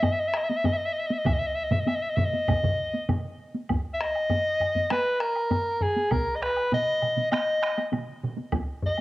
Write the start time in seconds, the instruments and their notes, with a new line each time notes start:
0.03 soprano saxophone D#5, taiko low-mid, taiko high, high woodblock
0.12 soprano saxophone E5
0.20 soprano saxophone D#5
0.28 soprano saxophone E5
0.34 soprano saxophone D#5, taiko rim, high woodblock
0.44 soprano saxophone E5
0.49 soprano saxophone D#5, taiko high
0.57 soprano saxophone E5
0.64 soprano saxophone D#5, taiko low-mid, taiko high, high woodblock
0.73 soprano saxophone E5
0.77 soprano saxophone D#5
0.85 soprano saxophone E5
0.93 soprano saxophone D#5
0.99 soprano saxophone E5
1.07 soprano saxophone D#5, taiko high
1.13 soprano saxophone E5
1.19 soprano saxophone D#5
1.25 soprano saxophone E5, taiko, taiko low-mid, taiko mid, taiko high, high woodblock
1.33 soprano saxophone D#5
1.39 soprano saxophone E5
1.47 soprano saxophone D#5
1.55 soprano saxophone E5
1.64 soprano saxophone D#5
1.71 soprano saxophone E5, taiko low-mid, taiko mid, taiko high
1.80 soprano saxophone D#5
1.87 soprano saxophone E5, taiko high, high woodblock
1.95 soprano saxophone D#5
2.02 soprano saxophone E5
2.10 soprano saxophone D#5
2.16 soprano saxophone E5, taiko low-mid, taiko mid, taiko high
2.25 soprano saxophone D#5
2.34 taiko high
2.48 taiko, taiko low-mid, taiko mid, taiko high, high woodblock
2.63 taiko low-mid, taiko mid
2.94 taiko high
3.09 taiko low-mid, taiko mid, taiko high, high woodblock
3.55 taiko high
3.69 taiko, taiko low-mid, taiko high, high woodblock
3.94 soprano saxophone E5
4.01 soprano saxophone D#5, taiko rim
4.15 high woodblock
4.30 taiko low-mid, taiko high, high woodblock
4.60 taiko low-mid, high woodblock
4.75 taiko low-mid, taiko high
4.90 soprano saxophone B4, taiko rim, taiko high, high woodblock
5.20 soprano saxophone A#4, taiko rim, high woodblock
5.36 high woodblock
5.50 taiko low-mid, taiko high, high woodblock
5.81 soprano saxophone G#4, taiko low-mid
5.96 taiko high
6.11 soprano saxophone A#4, taiko, taiko mid, taiko high, high woodblock
6.36 soprano saxophone D#5
6.42 soprano saxophone B4, taiko rim
6.57 high woodblock
6.72 soprano saxophone D#5, taiko mid, taiko high, high woodblock
7.02 taiko mid, high woodblock
7.17 taiko mid, taiko high
7.32 soprano saxophone D#5, taiko rim, taiko high, high woodblock
7.62 taiko rim, high woodblock
7.78 taiko high, high woodblock
7.92 taiko mid, taiko high, high woodblock
8.23 taiko mid
8.37 taiko high
8.52 taiko, taiko high, high woodblock
8.82 soprano saxophone D#5, taiko low-mid
8.97 high woodblock